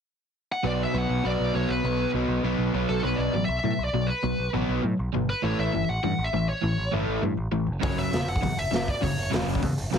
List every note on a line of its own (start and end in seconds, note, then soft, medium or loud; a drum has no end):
0.52 0.65 F#5 medium
0.64 0.85 B1 medium
0.64 0.95 B2 medium
0.64 0.95 F#3 medium
0.64 0.94 B3 loud
0.64 0.83 D5 medium
0.83 0.96 E5 medium
0.94 1.04 B1 medium
0.94 1.24 B2 medium
0.94 1.25 F#3 medium
0.94 1.25 B3 medium
0.98 1.24 F#5 medium
1.09 1.19 B1 medium
1.24 1.35 B1 medium
1.24 1.56 B2 medium
1.24 1.56 F#3 medium
1.24 1.55 B3 medium
1.24 1.54 D5 medium
1.40 1.50 B1 medium
1.55 1.65 B1 medium
1.55 1.84 B2 medium
1.55 1.84 F#3 medium
1.55 1.85 B3 medium
1.55 1.70 C#5 medium
1.69 1.79 B1 medium
1.69 2.11 B4 medium
1.84 2.05 B1 medium
1.84 2.15 B2 medium
1.84 2.14 F#3 loud
1.84 2.14 B3 loud
2.14 2.24 B1 medium
2.14 2.42 B2 medium
2.14 2.43 F#3 medium
2.14 2.43 B3 medium
2.28 2.39 B1 medium
2.43 2.54 B1 medium
2.43 2.73 B2 medium
2.43 2.73 F#3 medium
2.43 2.73 B3 medium
2.58 2.69 B1 medium
2.74 2.84 B1 medium
2.74 3.02 B2 medium
2.74 3.03 F#3 medium
2.74 3.03 B3 medium
2.89 2.99 B1 medium
2.89 3.03 A4 medium
3.03 3.13 B1 medium
3.03 3.33 B2 medium
3.03 3.33 F#3 loud
3.03 3.33 B3 loud
3.03 3.19 B4 medium
3.16 3.28 B1 medium
3.16 3.45 D5 medium
3.34 3.43 A1 medium
3.34 3.47 B2 medium
3.34 3.48 F#3 medium
3.45 3.58 B1 medium
3.45 3.58 E5 loud
3.59 3.84 E5 loud
3.64 3.73 A2 medium
3.64 3.77 B2 medium
3.64 3.78 F#3 medium
3.79 3.88 B1 medium
3.84 4.08 D5 medium
3.93 4.12 B1 medium
3.93 4.07 B2 medium
3.93 4.08 F#3 medium
4.07 4.49 B4 medium
4.23 4.33 B1 medium
4.23 4.37 B2 medium
4.23 4.37 F#3 medium
4.39 4.48 B1 medium
4.53 4.63 A1 medium
4.53 4.82 B2 medium
4.53 4.82 F#3 loud
4.53 4.83 B3 loud
4.69 4.78 B1 medium
4.83 4.93 A2 medium
4.83 4.97 B2 medium
4.83 4.97 F#3 medium
4.99 5.08 B1 medium
5.14 5.33 G1 medium
5.14 5.27 B2 medium
5.14 5.28 F#3 medium
5.30 5.44 B4 medium
5.42 5.53 A1 medium
5.42 5.73 A2 medium
5.42 5.73 E3 medium
5.42 5.73 A3 loud
5.42 5.58 C#5 medium
5.59 5.68 A1 medium
5.59 5.90 E5 loud
5.74 5.83 G1 medium
5.74 5.87 A2 medium
5.74 5.87 E3 medium
5.89 5.98 A1 medium
5.89 6.03 F#5 loud
6.03 6.13 G2 medium
6.03 6.17 A2 medium
6.03 6.17 E3 medium
6.03 6.25 F#5 loud
6.19 6.28 A1 medium
6.24 6.48 E5 loud
6.33 6.51 A1 medium
6.33 6.47 A2 medium
6.33 6.47 E3 medium
6.49 6.90 C#5 medium
6.63 6.72 A1 medium
6.63 6.77 A2 medium
6.63 6.77 E3 medium
6.78 6.87 A1 medium
6.93 7.02 G1 medium
6.93 7.22 A2 medium
6.93 7.22 E3 medium
6.93 7.23 A3 loud
7.08 7.17 A1 medium
7.23 7.32 G2 medium
7.23 7.36 A2 medium
7.23 7.37 E3 medium
7.37 7.47 A1 medium
7.52 7.68 A1 medium
7.52 7.66 A2 medium
7.52 7.66 E3 medium
7.67 7.76 F#1 medium
7.82 7.92 F#1 medium
7.82 8.10 F#2 medium
7.82 8.11 C#3 medium
7.82 8.12 F#3 loud
7.82 7.98 C#5 medium
7.82 kick loud
7.82 open hi-hat medium
7.96 8.06 F#1 medium
7.96 8.29 E5 medium
7.96 open hi-hat medium
8.11 8.22 E1 medium
8.11 8.26 F#2 medium
8.11 8.26 C#3 medium
8.11 snare loud
8.11 open hi-hat medium
8.28 8.37 F#1 medium
8.28 8.59 F#5 loud
8.28 open hi-hat medium
8.36 kick medium
8.42 8.53 E2 medium
8.42 8.56 F#2 medium
8.42 8.56 C#3 medium
8.42 kick medium
8.42 open hi-hat medium
8.57 8.67 F#1 medium
8.57 8.89 E5 medium
8.57 open hi-hat medium
8.71 8.91 F#1 medium
8.71 8.85 F#2 medium
8.71 8.86 C#3 medium
8.71 snare loud
8.71 open hi-hat medium
8.88 9.03 D5 medium
8.88 kick medium
8.88 open hi-hat medium
9.01 9.12 F#1 medium
9.01 9.15 F#2 medium
9.01 9.15 C#3 medium
9.01 9.31 C#5 medium
9.01 kick medium
9.01 open hi-hat medium
9.18 9.27 F#1 medium
9.18 open hi-hat medium
9.31 9.42 E1 medium
9.31 9.61 F#2 medium
9.31 9.61 C#3 medium
9.31 9.61 F#3 loud
9.31 snare loud
9.31 open hi-hat medium
9.47 9.56 F#1 medium
9.47 open hi-hat medium
9.55 kick medium
9.62 9.72 E2 medium
9.62 9.76 F#2 medium
9.62 9.76 C#3 medium
9.62 kick medium
9.62 open hi-hat medium
9.77 9.86 F#1 medium
9.77 open hi-hat medium
9.93 9.98 G1 medium
9.93 9.98 F#2 medium
9.93 9.98 C#3 medium
9.93 snare loud
9.93 open hi-hat medium